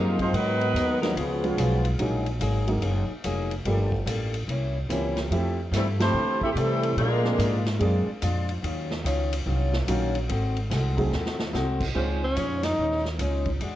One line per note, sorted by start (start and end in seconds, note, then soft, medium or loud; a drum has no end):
0.00 0.32 F#2 medium
0.00 0.17 C3 medium
0.00 0.20 C#3 medium
0.00 0.17 F3 medium
0.00 0.20 F3 medium
0.00 0.17 G#3 medium
0.00 0.17 A#3 medium
0.00 0.21 C4 medium
0.00 0.17 D#4 medium
0.00 0.21 D#4 medium
0.00 0.17 F4 medium
0.00 0.17 A#4 medium
0.19 0.32 F3 medium
0.19 0.32 G#3 medium
0.19 0.33 G#3 medium
0.19 0.32 C4 medium
0.19 0.33 D#4 medium
0.19 0.33 F4 medium
0.19 0.33 C5 medium
0.19 kick medium
0.19 ride soft
0.33 0.73 G#2 medium
0.33 1.01 D#3 medium
0.33 1.01 F#3 medium
0.33 1.00 F#3 medium
0.33 0.61 G#3 soft
0.33 0.62 B3 soft
0.33 1.02 B3 medium
0.33 1.01 D#4 medium
0.33 0.62 F#4 soft
0.33 1.01 A#4 medium
0.33 0.63 A#4 medium
0.33 1.02 B4 loud
0.33 ride medium
0.61 ride soft
0.74 1.14 D#2 medium
0.74 1.03 G#3 medium
0.74 1.03 B3 medium
0.74 1.03 F#4 medium
0.74 1.04 A#4 medium
0.74 hi-hat pedal medium
0.74 ride medium
1.01 1.15 D#3 medium
1.01 1.15 F3 medium
1.01 1.15 F#3 medium
1.01 1.15 G#3 medium
1.01 1.15 A#3 medium
1.01 1.15 B3 medium
1.01 1.15 C#4 medium
1.01 1.15 D#4 medium
1.01 1.15 A#4 medium
1.01 snare medium
1.01 ride soft
1.15 1.56 C#2 medium
1.15 1.84 B2 medium
1.15 1.44 C#3 soft
1.15 1.84 F3 medium
1.15 1.85 F3 medium
1.15 1.84 G#3 medium
1.15 1.45 G#3 soft
1.15 1.85 B3 medium
1.15 1.45 B3 soft
1.15 1.85 C#4 medium
1.15 1.45 F4 soft
1.15 1.84 G#4 medium
1.15 ride medium
1.43 1.96 F3 medium
1.43 1.96 G#3 medium
1.43 1.97 B3 medium
1.43 1.97 C#4 medium
1.43 1.97 F4 medium
1.43 ride soft
1.57 1.98 B1 medium
1.57 1.86 C#3 medium
1.57 1.86 G#3 medium
1.57 1.87 B3 medium
1.57 1.87 F4 medium
1.57 hi-hat pedal medium
1.57 ride medium
1.85 ride medium
1.99 2.39 A#1 medium
1.99 2.27 F#3 medium
1.99 2.23 F#3 medium
1.99 2.24 G#3 medium
1.99 2.24 A#3 medium
1.99 2.28 A#3 medium
1.99 2.24 C#4 medium
1.99 2.24 D#4 medium
1.99 2.28 D#4 medium
1.99 2.29 G#4 medium
1.99 ride medium
2.26 ride soft
2.40 2.81 G#1 medium
2.40 2.68 F#3 medium
2.40 2.69 A#3 medium
2.40 2.69 D#4 medium
2.40 2.70 G#4 medium
2.40 hi-hat pedal medium
2.40 ride medium
2.68 2.81 F#3 medium
2.68 2.81 G#3 medium
2.68 2.81 A#3 medium
2.68 2.81 C#4 medium
2.68 2.81 D#4 medium
2.68 ride medium
2.81 3.07 F#1 medium
2.81 3.10 F#3 soft
2.81 3.11 A#3 medium
2.81 3.11 D#4 medium
2.81 3.12 G#4 medium
2.81 ride medium
3.24 3.64 F1 medium
3.24 3.52 F#3 medium
3.24 3.52 A#3 medium
3.24 3.53 D#4 medium
3.24 3.53 G#4 medium
3.24 hi-hat pedal soft
3.24 ride medium
3.51 ride soft
3.65 4.05 G1 medium
3.65 3.90 F3 medium
3.65 3.93 G3 medium
3.65 3.90 A3 medium
3.65 3.90 A#3 soft
3.65 3.94 A#3 medium
3.65 3.90 D4 medium
3.65 3.94 F4 medium
3.65 3.90 G4 medium
3.65 3.95 A4 medium
3.65 ride medium
3.92 kick medium
4.06 4.47 A1 loud
4.06 4.35 G3 medium
4.06 4.35 A#3 medium
4.06 4.35 F4 medium
4.06 4.36 A4 medium
4.06 hi-hat pedal medium
4.06 ride medium
4.34 ride medium
4.48 4.88 C2 medium
4.48 4.76 C3 soft
4.48 4.77 A#3 soft
4.48 4.78 C#4 medium
4.48 4.78 E4 medium
4.48 ride medium
4.89 5.30 C#2 medium
4.89 5.18 C3 medium
4.89 5.31 E3 medium
4.89 5.31 A#3 medium
4.89 5.18 A#3 medium
4.89 5.30 C4 medium
4.89 5.32 C#4 medium
4.89 5.19 C#4 medium
4.89 5.19 E4 medium
4.89 5.31 G4 medium
4.89 hi-hat pedal medium
4.89 ride medium
5.17 snare soft
5.17 ride soft
5.30 5.71 F2 medium
5.30 5.59 F3 medium
5.30 5.55 F3 medium
5.30 5.55 A3 medium
5.30 5.60 A3 medium
5.30 5.56 C4 medium
5.30 5.56 E4 medium
5.30 5.60 E4 medium
5.30 5.56 G4 medium
5.30 5.61 G4 medium
5.30 ride medium
5.71 6.12 G2 medium
5.71 5.86 C3 medium
5.71 5.86 E3 medium
5.71 6.01 F3 medium
5.71 6.01 A3 medium
5.71 5.86 A3 medium
5.71 6.01 E4 medium
5.71 5.87 E4 medium
5.71 6.02 G4 medium
5.71 snare soft
5.71 hi-hat pedal medium
5.71 ride medium
5.76 5.87 G3 medium
5.76 5.87 C4 medium
5.76 5.87 A4 medium
5.99 6.39 E3 medium
5.99 6.12 F3 medium
5.99 6.13 A3 medium
5.99 6.39 A3 medium
5.99 6.40 A3 medium
5.99 6.13 C4 medium
5.99 6.39 C4 medium
5.99 6.13 E4 soft
5.99 6.40 E4 medium
5.99 6.40 G4 medium
5.99 6.13 A4 medium
5.99 6.39 C5 loud
5.99 snare medium
5.99 ride medium
6.14 6.54 D3 medium
6.14 6.42 F3 soft
6.14 6.43 A3 medium
6.14 6.43 E4 soft
6.14 6.44 G4 soft
6.41 6.50 A3 medium
6.41 6.50 C4 medium
6.41 6.51 C4 medium
6.41 6.50 E4 medium
6.41 6.50 G4 medium
6.41 6.51 A4 medium
6.41 6.51 E5 loud
6.41 kick medium
6.51 6.95 C3 medium
6.51 6.84 F3 medium
6.51 6.56 G4 medium
6.55 6.97 C3 medium
6.55 6.97 E3 medium
6.55 6.98 G3 medium
6.55 6.84 A3 medium
6.55 6.97 A3 medium
6.55 6.98 C4 medium
6.55 6.84 E4 medium
6.55 6.98 E4 medium
6.55 6.85 G4 medium
6.55 6.98 A4 loud
6.55 hi-hat pedal medium
6.55 ride medium
6.83 ride medium
6.97 7.37 A#2 medium
6.97 7.25 A#2 soft
6.97 7.62 D3 medium
6.97 7.62 F3 medium
6.97 7.62 G#3 medium
6.97 7.26 G#3 soft
6.97 7.62 A#3 medium
6.97 7.62 D4 medium
6.97 7.26 D4 soft
6.97 7.62 F4 medium
6.97 7.27 F4 medium
6.97 7.62 A#4 medium
6.97 ride medium
7.24 7.37 G#3 medium
7.24 7.37 A#3 medium
7.24 7.37 C4 medium
7.24 7.37 D4 medium
7.24 7.38 F4 medium
7.24 snare soft
7.38 7.79 G#2 loud
7.38 7.67 A#2 medium
7.38 7.67 G#3 medium
7.38 7.67 D4 medium
7.38 7.68 F4 medium
7.38 hi-hat pedal medium
7.38 ride medium
7.66 snare medium
7.66 ride soft
7.79 8.05 F#2 medium
7.79 8.08 A#2 soft
7.79 8.04 G#3 medium
7.79 8.09 G#3 medium
7.79 8.04 A#3 medium
7.79 8.04 C4 medium
7.79 8.04 D4 medium
7.79 8.10 D4 medium
7.79 8.10 F4 medium
7.79 8.05 G#4 medium
7.79 ride medium
8.07 muted upright bass stroke soft
8.21 8.62 F2 medium
8.21 8.50 A#2 medium
8.21 8.50 G#3 medium
8.21 8.51 D4 medium
8.21 8.51 F4 medium
8.21 hi-hat pedal medium
8.21 ride medium
8.49 ride soft
8.62 9.03 D#2 medium
8.62 8.91 D#3 medium
8.62 8.92 F#3 medium
8.62 8.92 C#4 medium
8.62 8.93 F4 medium
8.62 ride medium
8.91 snare medium
9.04 9.45 C#2 medium
9.04 9.33 D#3 medium
9.04 9.33 F#3 medium
9.04 9.34 C#4 medium
9.04 9.34 F4 medium
9.04 hi-hat pedal medium
9.04 ride medium
9.33 ride medium
9.46 9.86 C2 medium
9.46 9.74 D#3 medium
9.46 9.75 F#3 medium
9.46 9.75 C#4 medium
9.46 9.76 F4 medium
9.73 snare medium
9.87 10.28 A#1 medium
9.87 10.16 D#3 medium
9.87 10.29 F#3 medium
9.87 10.16 F#3 medium
9.87 10.29 A#3 medium
9.87 10.29 C#4 medium
9.87 10.17 C#4 medium
9.87 10.29 D#4 medium
9.87 10.30 F4 medium
9.87 10.17 F4 medium
9.87 hi-hat pedal medium
9.87 ride medium
10.15 ride soft
10.28 10.70 G#1 medium
10.28 10.57 G#3 medium
10.28 10.58 C4 medium
10.28 10.58 F#4 medium
10.28 10.59 A4 medium
10.28 ride medium
10.57 ride soft
10.70 11.11 C2 loud
10.70 10.99 G#3 medium
10.70 10.99 C4 medium
10.70 10.99 F#4 medium
10.70 11.00 A4 medium
10.70 snare soft
10.70 hi-hat pedal medium
10.70 ride medium
10.97 11.10 F#3 medium
10.97 11.10 A3 medium
10.97 11.11 C4 medium
10.97 11.11 D#4 medium
10.97 11.11 G#4 medium
10.97 kick medium
10.97 ride medium
11.11 11.52 D#2 medium
11.11 11.40 G#3 medium
11.11 11.41 C4 soft
11.11 11.41 F#4 medium
11.11 11.42 A4 medium
11.11 snare medium
11.26 snare medium
11.39 snare medium
11.53 11.94 C2 medium
11.53 11.82 G#3 medium
11.53 11.82 C4 medium
11.53 11.82 F#4 medium
11.53 11.83 A4 medium
11.53 snare medium
11.53 hi-hat pedal soft
11.80 kick medium
11.80 crash medium
11.94 12.35 C#2 medium
11.94 12.23 A#2 soft
11.94 12.19 G#3 medium
11.94 12.35 G#3 medium
11.94 12.24 G#3 soft
11.94 12.19 C4 soft
11.94 12.19 C#4 soft
11.94 12.35 C#4 medium
11.94 12.24 C#4 medium
11.94 12.19 D#4 soft
11.94 12.35 D#4 medium
11.94 12.25 D#4 medium
11.94 12.20 F4 medium
11.94 12.35 C5 medium
12.25 12.66 C#4 loud
12.36 12.77 F2 medium
12.36 12.65 A#2 medium
12.36 12.55 G#3 medium
12.36 12.65 G#3 medium
12.36 12.55 C#4 medium
12.36 12.65 C#4 medium
12.36 12.55 D#4 medium
12.36 12.66 D#4 medium
12.36 12.54 C#5 medium
12.36 hi-hat pedal medium
12.36 ride medium
12.63 13.06 D#4 loud
12.63 snare medium
12.63 ride medium
12.78 13.18 D#2 medium
12.78 13.06 A#2 soft
12.78 13.07 G#3 soft
12.78 13.07 C#4 soft
12.78 13.08 D#4 soft
12.92 snare soft
13.05 snare soft
13.19 13.59 C#2 medium
13.19 13.48 A#2 medium
13.19 13.48 G#3 medium
13.19 13.49 C#4 medium
13.19 13.49 D#4 medium
13.19 hi-hat pedal medium
13.19 ride medium
13.46 kick medium
13.46 ride soft
13.61 13.76 E2 medium
13.61 13.76 E3 medium
13.61 13.76 G#3 medium
13.61 13.76 D4 medium
13.61 13.76 F#4 medium
13.61 ride medium